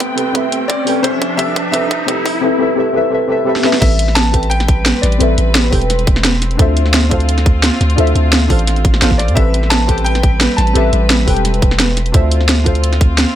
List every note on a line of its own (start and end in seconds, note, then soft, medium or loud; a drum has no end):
0.00 1.01 A3 medium
0.00 0.16 C4 medium
0.00 1.01 C4 medium
0.00 0.17 G4 medium
0.00 0.18 A4 medium
0.00 0.19 B4 medium
0.00 1.01 B4 medium
0.00 0.37 E5 loud
0.00 0.20 G5 medium
0.00 1.01 G5 medium
0.00 kick loud
0.00 closed hi-hat medium
0.00 riser medium
0.16 0.32 C4 medium
0.16 0.33 G4 medium
0.16 0.34 A4 medium
0.16 0.34 B4 medium
0.16 closed hi-hat medium
0.20 0.35 G5 medium
0.33 0.84 C4 medium
0.33 0.84 G4 medium
0.33 0.85 A4 medium
0.33 0.85 B4 medium
0.33 kick loud
0.33 closed hi-hat medium
0.37 0.86 E5 loud
0.52 closed hi-hat medium
0.68 1.05 D5 loud
0.68 kick loud
0.68 closed hi-hat medium
0.85 1.01 C4 medium
0.85 1.02 G4 medium
0.85 1.03 A4 medium
0.85 1.04 B4 medium
0.85 open hi-hat medium
0.89 1.04 G5 medium
1.02 2.42 F3 medium
1.02 1.36 C4 medium
1.02 2.41 C4 medium
1.02 2.41 D4 medium
1.02 1.37 G4 medium
1.02 1.38 A4 medium
1.02 1.39 C5 loud
1.02 1.38 C5 medium
1.02 2.42 E5 medium
1.02 kick loud
1.02 closed hi-hat loud
1.07 1.39 E5 loud
1.22 kick loud
1.22 closed hi-hat medium
1.37 1.70 C4 medium
1.37 1.71 G4 medium
1.37 1.72 A4 medium
1.37 1.73 B4 medium
1.37 1.70 E5 loud
1.37 kick loud
1.37 closed hi-hat loud
1.41 1.73 E5 loud
1.56 kick loud
1.56 closed hi-hat medium
1.72 2.05 C4 loud
1.72 2.06 G4 medium
1.72 2.07 A4 medium
1.72 2.08 B4 medium
1.72 2.38 E5 loud
1.72 kick loud
1.72 closed hi-hat loud
1.76 2.08 E5 loud
1.91 kick loud
1.91 closed hi-hat medium
2.06 2.40 C4 loud
2.06 2.41 G4 medium
2.06 2.42 A4 medium
2.06 2.42 B4 medium
2.06 kick loud
2.06 closed hi-hat loud
2.11 2.43 E5 loud
2.26 kick loud
2.26 open hi-hat medium
2.41 2.57 C4 loud
2.41 2.58 G4 medium
2.41 2.59 A4 medium
2.41 2.60 B4 medium
2.45 2.60 E5 loud
2.58 2.74 C4 loud
2.58 2.75 G4 medium
2.58 2.76 A4 medium
2.58 2.77 B4 medium
2.62 2.77 E5 loud
2.76 2.92 C4 loud
2.76 2.93 G4 medium
2.76 2.94 A4 medium
2.76 2.94 B4 medium
2.80 2.95 E5 loud
2.93 3.09 C4 loud
2.93 3.10 G4 medium
2.93 3.11 A4 medium
2.93 3.12 B4 medium
2.97 3.12 E5 loud
3.10 3.26 C4 loud
3.10 3.27 G4 medium
3.10 3.28 A4 medium
3.10 3.29 B4 medium
3.14 3.29 E5 loud
3.28 3.44 C4 loud
3.28 3.45 G4 medium
3.28 3.46 A4 medium
3.28 3.46 B4 medium
3.32 3.47 E5 loud
3.45 3.61 C4 loud
3.45 3.62 G4 medium
3.45 3.63 A4 medium
3.45 3.64 B4 medium
3.49 3.64 E5 loud
3.56 snare medium
3.62 3.79 C4 loud
3.62 3.80 G4 medium
3.62 3.81 A4 medium
3.62 3.81 B4 medium
3.62 snare medium
3.67 3.82 E5 loud
3.73 snare medium
3.80 4.93 A1 loud
3.80 6.56 G3 medium
3.80 4.30 C4 medium
3.80 12.10 C4 medium
3.80 4.31 G4 medium
3.80 4.32 A4 medium
3.80 6.56 B4 medium
3.80 4.32 B4 medium
3.80 4.17 E5 loud
3.80 kick loud
3.80 closed hi-hat loud
3.80 crash loud
3.84 4.33 E5 loud
3.99 closed hi-hat medium
4.08 snare soft
4.15 4.48 A5 loud
4.15 snare loud
4.15 closed hi-hat loud
4.32 5.17 C4 medium
4.32 5.18 G4 medium
4.32 5.19 A4 medium
4.32 5.19 B4 medium
4.32 kick medium
4.32 closed hi-hat medium
4.36 5.20 G5 medium
4.43 closed hi-hat soft
4.50 4.99 G5 loud
4.50 closed hi-hat medium
4.60 snare soft
4.60 closed hi-hat soft
4.68 kick loud
4.68 closed hi-hat medium
4.86 snare loud
4.86 closed hi-hat loud
5.02 5.19 A1 medium
5.02 5.35 D5 medium
5.02 snare soft
5.02 closed hi-hat medium
5.12 closed hi-hat soft
5.18 5.36 A1 loud
5.18 5.69 C4 loud
5.18 5.70 G4 medium
5.18 5.71 A4 medium
5.18 5.71 B4 medium
5.18 closed hi-hat medium
5.23 5.72 E5 loud
5.38 5.71 A1 medium
5.38 closed hi-hat medium
5.55 snare loud
5.55 closed hi-hat medium
5.70 6.58 E1 loud
5.70 6.56 C4 medium
5.70 6.57 G4 medium
5.70 6.57 A4 medium
5.70 6.58 B4 medium
5.70 kick medium
5.70 open hi-hat medium
5.75 6.58 G5 medium
5.82 closed hi-hat soft
5.90 snare soft
5.90 closed hi-hat medium
5.99 closed hi-hat soft
6.07 kick loud
6.07 closed hi-hat medium
6.16 snare medium
6.25 snare loud
6.25 closed hi-hat medium
6.42 snare soft
6.42 closed hi-hat medium
6.51 closed hi-hat soft
6.57 7.71 D2 loud
6.57 7.08 D4 loud
6.57 7.09 F4 medium
6.57 9.34 F4 medium
6.57 7.09 A4 medium
6.57 7.10 C5 medium
6.57 kick loud
6.57 closed hi-hat medium
6.61 7.10 E5 loud
6.77 closed hi-hat medium
6.86 snare soft
6.94 snare loud
6.94 closed hi-hat medium
7.09 7.95 D4 medium
7.09 7.95 F4 medium
7.09 7.96 A4 medium
7.09 7.97 C5 medium
7.09 kick medium
7.09 closed hi-hat medium
7.13 7.97 F5 medium
7.20 closed hi-hat soft
7.29 closed hi-hat medium
7.38 snare soft
7.38 closed hi-hat soft
7.46 kick loud
7.46 closed hi-hat medium
7.63 snare loud
7.63 closed hi-hat medium
7.81 7.96 D2 medium
7.81 snare soft
7.81 closed hi-hat medium
7.90 closed hi-hat soft
7.96 8.14 D2 loud
7.96 8.47 D4 medium
7.96 8.47 F4 medium
7.96 8.48 A4 medium
7.96 8.49 C5 medium
7.96 closed hi-hat medium
8.00 8.49 E5 loud
8.07 closed hi-hat soft
8.15 8.49 D2 medium
8.15 closed hi-hat medium
8.33 snare loud
8.33 closed hi-hat medium
8.48 9.02 A1 loud
8.48 8.99 D4 medium
8.48 9.00 F4 medium
8.48 9.00 A4 medium
8.48 9.01 C5 medium
8.48 kick medium
8.48 open hi-hat medium
8.52 9.01 F5 medium
8.59 closed hi-hat soft
8.67 snare soft
8.67 closed hi-hat medium
8.76 closed hi-hat soft
8.85 kick loud
8.85 closed hi-hat medium
8.94 snare medium
9.01 9.30 A1 medium
9.01 9.34 D4 medium
9.01 9.34 F4 medium
9.01 9.35 A4 medium
9.01 9.35 C5 medium
9.01 9.35 F5 loud
9.01 snare loud
9.01 closed hi-hat medium
9.11 kick medium
9.18 9.35 D5 medium
9.18 snare soft
9.18 closed hi-hat medium
9.28 9.36 G2 medium
9.28 closed hi-hat soft
9.34 10.48 A1 loud
9.34 12.11 G3 medium
9.34 9.85 C4 loud
9.34 9.86 G4 medium
9.34 9.87 A4 medium
9.34 12.11 B4 medium
9.34 9.87 B4 medium
9.34 9.72 E5 loud
9.34 kick loud
9.34 closed hi-hat medium
9.39 9.88 E5 loud
9.54 closed hi-hat medium
9.63 snare soft
9.70 10.06 A5 loud
9.70 snare loud
9.70 closed hi-hat medium
9.86 10.72 C4 medium
9.86 10.73 G4 medium
9.86 10.73 A4 medium
9.86 10.74 B4 medium
9.86 kick medium
9.86 closed hi-hat medium
9.91 10.74 G5 medium
9.98 closed hi-hat soft
10.04 10.59 G5 loud
10.04 closed hi-hat medium
10.15 snare soft
10.15 closed hi-hat soft
10.23 kick loud
10.23 closed hi-hat medium
10.41 snare loud
10.41 closed hi-hat medium
10.57 10.74 A1 medium
10.57 11.92 A5 loud
10.57 snare soft
10.57 closed hi-hat medium
10.67 closed hi-hat soft
10.73 10.91 A1 loud
10.73 11.24 C4 loud
10.73 11.25 G4 medium
10.73 11.25 A4 medium
10.73 11.26 B4 medium
10.73 closed hi-hat medium
10.78 11.27 E5 loud
10.93 11.26 A1 loud
10.93 closed hi-hat medium
11.10 snare loud
11.10 closed hi-hat medium
11.25 12.13 E1 loud
11.25 12.11 C4 medium
11.25 12.12 G4 medium
11.25 12.12 A4 medium
11.25 12.13 B4 medium
11.25 kick medium
11.25 open hi-hat medium
11.30 12.13 G5 medium
11.36 closed hi-hat soft
11.45 snare soft
11.45 closed hi-hat medium
11.54 closed hi-hat soft
11.62 kick loud
11.62 closed hi-hat medium
11.71 snare medium
11.80 snare loud
11.80 closed hi-hat loud
11.97 snare soft
11.97 closed hi-hat medium
12.06 closed hi-hat soft
12.12 13.26 D2 loud
12.12 13.35 C4 medium
12.12 12.63 D4 loud
12.12 12.64 F4 medium
12.12 13.35 F4 medium
12.12 12.64 A4 medium
12.12 12.65 C5 medium
12.12 kick loud
12.12 closed hi-hat loud
12.16 12.65 E5 loud
12.31 closed hi-hat medium
12.41 snare soft
12.49 snare loud
12.49 closed hi-hat medium
12.64 13.35 D4 medium
12.64 13.35 F4 medium
12.64 13.35 A4 medium
12.64 13.35 C5 medium
12.64 kick medium
12.64 closed hi-hat medium
12.68 13.35 F5 loud
12.75 closed hi-hat soft
12.84 closed hi-hat medium
12.93 snare soft
12.93 closed hi-hat soft
13.01 kick loud
13.01 closed hi-hat medium
13.18 snare loud
13.18 closed hi-hat loud